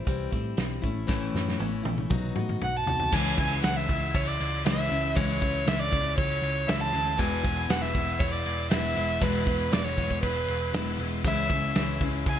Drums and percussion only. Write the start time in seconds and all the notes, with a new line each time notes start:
0.07 kick, closed hi-hat
0.32 kick, closed hi-hat
0.57 snare, closed hi-hat
0.84 kick, closed hi-hat
1.09 kick, snare
1.36 snare
1.49 snare
1.60 high tom
1.85 high tom
1.98 mid tom
2.10 kick, mid tom
2.36 mid tom
2.49 mid tom
2.62 mid tom
2.87 floor tom
3.00 floor tom
3.12 kick, crash
3.38 kick, crash
3.63 snare, crash
3.89 kick, crash
4.14 kick, crash
4.40 crash
4.66 snare, crash
4.92 crash
5.17 kick, crash
5.42 kick, crash
5.67 snare, crash
5.93 kick, crash
6.18 kick, crash
6.43 crash
6.69 snare, crash
6.94 crash
7.19 kick, crash
7.44 kick, crash
7.70 snare, crash
7.83 snare
7.95 kick, crash
8.20 kick, crash
8.46 crash
8.71 snare, crash
8.96 crash
9.22 kick, crash
9.47 kick, crash
9.73 snare, crash
9.86 snare
9.98 kick, crash
10.11 kick
10.23 kick, crash
10.48 crash
10.74 snare, crash
11.00 crash
11.25 kick, crash
11.50 kick, crash
11.75 snare, crash
12.01 kick, crash
12.26 kick, crash